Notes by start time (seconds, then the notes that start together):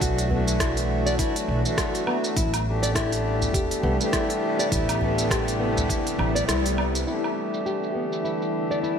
Already playing: E3 F#3 A3 B3 D4 F#4
0.01 B1 F#4, kick, open hi-hat, udu, shaker
0.18 open hi-hat, shaker
0.29 E3 A3 B3 D4, udu
0.33 F#4
0.48 open hi-hat, shaker
0.60 E4, kick, cross-stick, open hi-hat, shaker
0.77 open hi-hat, shaker
1.06 D5, shaker
1.19 E4, kick, open hi-hat, shaker
1.36 open hi-hat, shaker
1.48 B1
1.63 E3 A3 D4, shaker
1.68 F#4
1.77 F#4, kick, cross-stick, open hi-hat, shaker
1.95 open hi-hat, shaker
2.07 B3, low woodblock
2.24 shaker
2.36 A1 C3 G3 B3 E4, kick, open hi-hat, udu, shaker
2.54 open hi-hat, low woodblock, shaker
2.64 E3 A3 D4 G4
2.83 D5, open hi-hat, shaker
2.95 E4, kick, cross-stick, open hi-hat, shaker
3.12 open hi-hat, shaker
3.42 udu, shaker
3.54 E1 G4, kick, open hi-hat, shaker
3.71 open hi-hat, shaker
3.83 C2 B3
3.98 E3 A3 D4, shaker
4.02 G4
4.13 E4, kick, cross-stick, open hi-hat, shaker
4.30 open hi-hat, shaker
4.59 D5, shaker
4.72 A1 E4, kick, open hi-hat, udu, shaker
4.89 open hi-hat, low woodblock, shaker
4.99 E3 A3 D4 G4, udu
5.18 open hi-hat, shaker
5.30 G4, kick, cross-stick, open hi-hat, shaker
5.48 open hi-hat, shaker
5.60 B3
5.78 udu, shaker
5.89 E4, kick, open hi-hat, shaker
6.07 open hi-hat, shaker
6.19 A1, low woodblock
6.35 D5, open hi-hat, shaker
6.48 C2 E4, cross-stick, open hi-hat, shaker
6.66 open hi-hat, shaker
6.78 low woodblock
6.95 open hi-hat, shaker
7.05 D3 E3 G3 A3 B3 D4 E4, shaker
7.09 G4
7.24 low woodblock, shaker
7.54 shaker
7.66 G4, shaker
7.83 shaker
7.95 B3
8.13 shaker
8.24 E4, shaker
8.42 shaker
8.71 D5, shaker
8.83 E4, shaker